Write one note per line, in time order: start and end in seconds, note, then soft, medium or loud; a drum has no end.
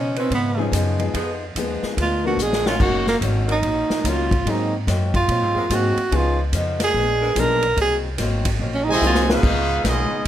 0.00 0.29 B2 medium
0.00 0.18 C#3 medium
0.00 0.18 F3 medium
0.00 0.18 B3 medium
0.00 0.18 C#4 medium
0.00 0.19 D#4 medium
0.16 0.55 F3 loud
0.16 0.31 C4 medium
0.16 0.56 C#4 medium
0.16 0.56 D#4 medium
0.16 0.55 B4 loud
0.16 ride medium
0.29 0.71 G#2 medium
0.29 0.58 C#3 medium
0.29 0.59 F3 medium
0.29 0.60 B3 medium
0.29 0.60 D#4 medium
0.29 kick soft
0.29 ride medium
0.34 0.71 B3 medium
0.56 0.68 F3 medium
0.56 0.97 F3 medium
0.56 0.97 B3 medium
0.56 0.67 C#4 medium
0.56 0.97 C#4 medium
0.56 0.67 D#4 medium
0.56 0.97 D#4 medium
0.56 0.67 G#4 loud
0.56 0.97 G#4 medium
0.72 1.13 F#2 loud
0.72 1.00 C#3 medium
0.72 1.01 F3 medium
0.72 1.01 B3 medium
0.72 1.02 D#4 medium
0.72 kick soft
0.72 hi-hat pedal medium
0.72 ride medium
0.99 1.12 F3 medium
0.99 1.12 G#3 medium
0.99 1.12 B3 medium
0.99 1.13 D#4 medium
0.99 1.13 G#4 medium
0.99 ride medium
1.14 1.54 F2 medium
1.14 1.32 F3 medium
1.14 1.43 F3 medium
1.14 1.32 B3 medium
1.14 1.43 B3 medium
1.14 1.32 D#4 medium
1.14 1.44 D#4 medium
1.14 1.32 G#4 loud
1.14 1.44 G#4 medium
1.14 kick soft
1.14 ride medium
1.55 1.81 D#2 medium
1.55 1.85 F3 medium
1.55 1.98 F3 medium
1.55 1.98 G#3 medium
1.55 1.98 B3 medium
1.55 1.85 B3 medium
1.55 1.98 D#4 medium
1.55 1.86 D#4 medium
1.55 1.98 G#4 medium
1.55 kick soft
1.55 hi-hat pedal medium
1.55 ride medium
1.60 1.86 G#4 medium
1.83 muted upright bass stroke soft
1.83 snare soft
1.97 2.36 D2 medium
1.97 2.26 A#2 medium
1.97 2.27 G#3 medium
1.97 2.27 B3 medium
1.97 2.27 D4 medium
1.97 kick soft
1.97 ride medium
2.02 2.25 F4 medium
2.24 2.37 F3 medium
2.24 2.37 A#3 medium
2.24 2.38 B3 medium
2.24 2.38 D4 medium
2.24 2.44 F#4 medium
2.24 2.38 A#4 medium
2.37 2.78 A#1 medium
2.37 2.68 A#2 medium
2.37 2.68 G#3 medium
2.37 hi-hat pedal medium
2.41 2.68 B3 medium
2.41 2.69 D4 medium
2.41 2.69 G#4 loud
2.53 snare medium
2.66 2.76 F#3 loud
2.66 2.76 C#4 loud
2.66 2.76 D#4 medium
2.66 2.75 F4 loud
2.66 2.83 F4 medium
2.66 snare medium
2.80 3.20 F#1 medium
2.80 3.08 D#3 soft
2.80 3.04 F#3 medium
2.80 3.05 A#3 medium
2.80 3.09 A#3 medium
2.80 3.05 C#4 medium
2.80 3.10 C#4 medium
2.80 3.05 D#4 medium
2.80 3.08 F#4 loud
2.80 3.10 F#4 medium
2.80 3.05 A#4 medium
2.80 kick medium
2.80 crash medium
3.07 3.17 A#3 loud
3.07 snare medium
3.21 3.62 G#1 medium
3.21 3.50 D#3 medium
3.21 3.50 A#3 medium
3.21 3.51 C#4 medium
3.21 3.51 F#4 medium
3.21 kick soft
3.21 hi-hat pedal medium
3.21 ride medium
3.47 3.58 F#3 medium
3.47 3.58 C#4 medium
3.47 3.58 D#4 medium
3.47 3.58 A#4 loud
3.47 ride medium
3.52 4.10 D#4 medium
3.63 3.88 A#1 medium
3.63 3.92 D#3 medium
3.63 3.92 A#3 medium
3.63 3.93 C#4 medium
3.63 3.93 F#4 medium
3.63 kick soft
3.63 ride medium
3.90 muted upright bass stroke soft
3.90 snare medium
4.04 4.45 C#2 medium
4.04 4.33 D#3 medium
4.04 4.29 F#3 medium
4.04 4.29 A#3 medium
4.04 4.34 A#3 medium
4.04 4.29 C#4 medium
4.04 4.34 C#4 medium
4.04 4.30 D#4 medium
4.04 4.30 F4 medium
4.04 4.34 F#4 medium
4.04 kick soft
4.04 hi-hat pedal medium
4.04 ride medium
4.09 4.51 F4 medium
4.31 kick medium
4.31 ride medium
4.45 4.86 G#2 medium
4.45 4.75 G#2 soft
4.45 4.71 F#3 medium
4.45 4.75 F#3 medium
4.45 4.71 A#3 medium
4.45 4.76 A#3 medium
4.45 4.71 C4 medium
4.45 4.76 C4 medium
4.45 4.71 D#4 medium
4.45 4.71 G#4 medium
4.45 kick soft
4.45 ride medium
4.50 4.75 D#4 medium
4.87 5.28 F#2 medium
4.87 5.16 G#2 medium
4.87 5.16 F#3 medium
4.87 5.17 A#3 medium
4.87 5.17 C4 medium
4.87 kick soft
4.87 snare soft
4.87 hi-hat pedal medium
4.87 ride medium
5.14 5.77 F4 loud
5.14 kick medium
5.14 ride medium
5.28 5.57 G#2 medium
5.28 5.42 A#2 loud
5.28 5.58 F#3 medium
5.28 5.59 A#3 medium
5.28 5.59 C4 medium
5.28 kick soft
5.28 ride medium
5.42 5.54 G#2 medium
5.55 5.69 F#2 medium
5.55 5.66 F#3 medium
5.55 5.65 A#3 medium
5.55 5.65 C4 medium
5.55 5.65 G#4 loud
5.70 5.95 G#2 loud
5.70 5.99 G#2 medium
5.70 5.95 F#3 medium
5.70 5.99 F#3 medium
5.70 5.95 A#3 medium
5.70 5.99 A#3 medium
5.70 5.95 C4 medium
5.70 6.00 C4 medium
5.70 5.95 D#4 medium
5.70 5.95 G#4 medium
5.70 kick soft
5.70 hi-hat pedal medium
5.70 ride medium
5.75 6.18 F#4 loud
5.97 muted upright bass stroke soft
5.97 ride medium
6.11 6.52 C#2 medium
6.11 6.40 C#3 soft
6.11 6.36 F3 medium
6.11 6.41 F3 medium
6.11 6.36 B3 medium
6.11 6.41 B3 medium
6.11 6.36 C#4 medium
6.11 6.36 D#4 medium
6.11 6.42 D#4 medium
6.11 6.37 G#4 medium
6.11 kick soft
6.11 ride medium
6.16 6.41 F4 medium
6.52 6.93 F2 medium
6.52 6.82 C#3 medium
6.52 6.82 F3 medium
6.52 6.83 B3 medium
6.52 6.83 D#4 medium
6.52 kick soft
6.52 hi-hat pedal medium
6.52 ride medium
6.80 snare medium
6.80 ride medium
6.84 7.42 G#4 loud
6.94 7.35 A#1 medium
6.94 7.23 A#2 medium
6.94 7.24 G#3 medium
6.94 7.24 B3 medium
6.94 7.25 D4 medium
6.94 kick soft
7.21 7.31 G#3 medium
7.21 7.31 B3 medium
7.21 7.31 D4 medium
7.21 7.31 A#4 loud
7.36 7.76 B1 loud
7.36 7.65 A#2 medium
7.36 7.60 F3 medium
7.36 7.66 G#3 medium
7.36 7.60 A#3 medium
7.36 7.61 B3 medium
7.36 7.66 B3 medium
7.36 7.60 D4 medium
7.36 7.66 D4 medium
7.36 7.61 G#4 medium
7.36 kick soft
7.36 hi-hat pedal medium
7.36 ride medium
7.40 7.79 A#4 loud
7.62 ride medium
7.76 8.17 C2 medium
7.76 8.06 G#2 soft
7.76 8.07 F#3 soft
7.76 kick soft
7.76 ride medium
7.80 8.07 A#3 medium
7.80 8.08 C4 medium
7.80 7.97 G#4 loud
8.18 8.59 G#1 medium
8.18 8.47 G#2 medium
8.18 8.48 F#3 medium
8.18 8.48 A#3 medium
8.18 8.49 C4 medium
8.18 kick soft
8.18 snare soft
8.18 hi-hat pedal soft
8.18 ride medium
8.45 kick medium
8.45 ride medium
8.59 9.00 A#1 medium
8.59 8.88 G#2 medium
8.59 8.89 F#3 medium
8.59 8.90 A#3 medium
8.59 8.90 C4 medium
8.59 kick soft
8.75 8.86 C#4 medium
8.84 9.26 C3 loud
8.84 9.26 D#3 medium
8.84 8.97 D#4 loud
8.88 9.26 G#3 medium
8.88 9.27 F#4 loud
8.88 9.27 C5 loud
8.88 9.28 D#5 loud
8.88 9.28 G#5 loud
8.96 9.02 E4 medium
9.01 9.41 C2 medium
9.01 9.30 G#2 medium
9.01 9.44 F#3 medium
9.01 9.31 F#3 medium
9.01 9.44 A#3 medium
9.01 9.31 A#3 medium
9.01 9.44 C4 medium
9.01 9.31 C4 medium
9.01 9.44 D#4 medium
9.01 9.44 G#4 medium
9.01 hi-hat pedal medium
9.07 9.21 F4 medium
9.15 snare medium
9.29 9.39 F3 medium
9.29 9.84 G#3 medium
9.29 9.84 B3 medium
9.29 9.39 C#4 medium
9.29 9.39 D#4 medium
9.29 9.86 F4 medium
9.29 9.39 B4 loud
9.29 9.33 E5 medium
9.29 snare loud
9.34 9.86 D#4 medium
9.34 9.87 G#4 medium
9.34 9.87 B4 loud
9.34 9.87 F5 loud
9.43 9.83 C#2 medium
9.43 9.72 C#3 soft
9.43 9.72 F3 soft
9.43 9.73 B3 medium
9.43 kick medium
9.43 crash medium
9.47 9.73 D#4 medium
9.84 10.09 B1 medium
9.84 10.13 C#3 medium
9.84 10.14 F3 medium
9.84 10.23 G#3 medium
9.84 10.23 B3 medium
9.84 10.14 B3 medium
9.84 10.23 D#4 medium
9.84 10.15 D#4 medium
9.84 kick soft
9.84 snare medium
9.84 hi-hat pedal medium
9.84 ride medium
9.89 10.25 B3 medium
9.89 10.25 F4 medium
9.89 10.25 G#4 medium
9.89 10.25 D#5 loud
10.11 muted upright bass stroke soft